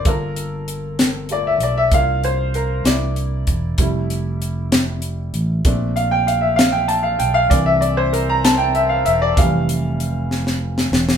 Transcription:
<<
  \new Staff \with { instrumentName = "Upright piano" } { \time 6/8 \key f \major \tempo 4. = 64 bes'4 r4 d''16 e''16 d''16 e''16 | f''8 c''8 bes'8 d''4.~ | d''4 r2 | r8 f''16 g''16 f''16 e''16 f''16 g''16 a''16 f''16 g''16 f''16 |
d''16 e''16 d''16 c''16 bes'16 bes''16 a''16 g''16 e''16 f''16 e''16 d''16 | f''2~ f''8 r8 | }
  \new Staff \with { instrumentName = "Upright piano" } { \time 6/8 \key f \major <bes f' a'>8 r4. <a bes f'>8 r8 | <bes d' f'>4. <bes d' e'>4. | <g a e'>4. r4. | <a c' d'>2. |
<e bes d'>8 r2 r8 | <e g a>2. | }
  \new Staff \with { instrumentName = "Fingered electric bass" } { \clef bass \time 6/8 \key f \major g,,2~ g,,8 b,,8 | c,4. c,4 e,,8 | f,,2~ f,,8 a,,8 | bes,,2~ bes,,8 b,,8 |
c,2~ c,8 e,,8 | f,,2~ f,,8 e,,8 | }
  \new DrumStaff \with { instrumentName = "Drums" } \drummode { \time 6/8 <hh bd>8 hh8 hh8 <hh sn>8 hh8 hh8 | <hh bd>8 hh8 hh8 <hh sn>8 hh8 <hh bd>8 | <hh bd>8 hh8 hh8 <hh sn>8 hh8 hh8 | <hh bd>8 hh8 hh8 <hh sn>8 hh8 hh8 |
<hh bd>8 hh8 hh8 <hh sn>8 hh8 hh8 | <hh bd>8 hh8 hh8 sn16 sn8 sn16 sn16 sn16 | }
>>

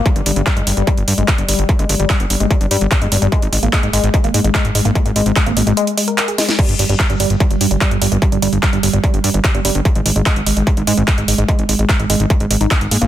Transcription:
<<
  \new Staff \with { instrumentName = "Synth arpeggio sound" } { \clef bass \time 4/4 \key aes \lydian \tempo 4 = 147 g16 g16 g16 r16 g16 aes16 g16 g16 g16 r16 g16 aes16 g16 g16 g16 r16 | g16 aes16 g16 g16 g16 r16 g16 aes16 g16 g16 g16 r16 g16 aes16 g16 g16 | aes16 r16 aes16 bes16 aes16 aes16 aes16 r16 aes16 bes16 aes16 aes16 aes16 r16 aes16 bes16 | aes16 aes16 aes16 r16 aes16 bes16 aes16 aes16 aes16 r16 aes16 bes'16 bes'16 aes'16 aes16 r16 |
g16 r16 g16 g16 g16 g16 g16 r16 g16 g16 g16 g16 g16 r16 g16 g16 | g16 g16 g16 r16 g16 g16 g16 g16 g16 r16 g16 g16 g16 g16 g16 r16 | aes16 aes16 aes16 aes16 aes16 r16 aes16 aes16 aes16 aes16 aes16 r16 aes16 aes16 aes16 aes16 | aes16 r16 aes16 aes16 aes16 aes16 aes16 r16 aes16 aes16 aes16 ees'16 aes16 r16 bes16 bes16 | }
  \new Staff \with { instrumentName = "Analog synth bass" } { \clef bass \time 4/4 \key aes \lydian r16 g,,16 g,,16 g,,16 r16 g,,16 g,,16 g,,16 r16 g,,16 g,16 g,,16 r16 g,,16 g,,16 g,,16 | r16 g,,16 g,,16 g,,16 r16 g,,16 g,,16 g,,16 r16 g,,16 g,16 g,,16 r16 g,,16 g,,16 g,,16 | r16 aes,,16 aes,,16 aes,,16 r16 aes,,16 aes,,16 aes,,16 r16 aes,,16 aes,16 aes,,16 r16 aes,,16 aes,,16 aes,,16 | r16 aes,,16 aes,,16 aes,,16 r16 aes,,16 aes,,16 aes,,16 r2 |
r16 g,,16 g,,16 g,,16 r16 g,,16 g,,16 g,,16 r16 g,,16 g,16 g,,16 r16 g,,16 g,,16 g,,16 | r16 g,,16 g,,16 g,,16 r16 g,,16 g,,16 g,,16 r16 g,,16 g,16 g,,16 r16 g,,16 g,,16 g,,16 | r16 aes,,16 aes,,16 aes,,16 r16 aes,,16 aes,,16 aes,,16 r16 aes,,16 aes,16 aes,,16 r16 aes,,16 aes,,16 aes,,16 | r16 aes,,16 aes,,16 aes,,16 r16 aes,,16 aes,,16 aes,,16 r16 aes,,16 aes,,16 aes,,16 r16 aes,,16 aes,16 aes,,16 | }
  \new DrumStaff \with { instrumentName = "Drums" } \drummode { \time 4/4 <hh bd>16 hh16 hho16 hh16 <hc hh bd>16 hh16 hho16 hh16 <hh bd>16 hh16 hho16 hh16 <hc hh bd>16 hh16 hho16 hh16 | <hh bd>16 hh16 hho16 hh16 <hc hh bd>16 hh16 hho16 hh16 <hh bd>16 hh16 hho16 hh16 <hc hh bd>16 hh16 hho16 hh16 | <hh bd>16 hh16 hho16 hh16 <hc hh bd>16 hh16 hho16 hh16 <hh bd>16 hh16 hho16 hh16 <hc hh bd>16 hh16 hho16 hh16 | <hh bd>16 hh16 hho16 hh16 <hc hh bd>16 hh16 hho16 hh16 hh16 hh16 hho16 hh16 <hc hh>16 hh16 <hho sn>16 <hh sn>16 |
<cymc hh bd>16 hh16 hho16 hh16 <hc hh bd>16 hh16 hho16 hh16 <hh bd>16 hh16 hho16 hh16 <hc hh bd>16 hh16 hho16 hh16 | <hh bd>16 hh16 hho16 hh16 <hc hh bd>16 hh16 hho16 hh16 <hh bd>16 hh16 hho16 hh16 <hc hh bd>16 hh16 hho16 hh16 | <hh bd>16 hh16 hho16 hh16 <hc hh bd>16 hh16 hho16 hh16 <hh bd>16 hh16 hho16 hh16 <hc hh bd>16 hh16 hho16 hh16 | <hh bd>16 hh16 hho16 hh16 <hc hh bd>16 hh16 hho16 hh16 <hh bd>16 hh16 hho16 hh16 <hc hh bd>16 hh16 hho16 hh16 | }
>>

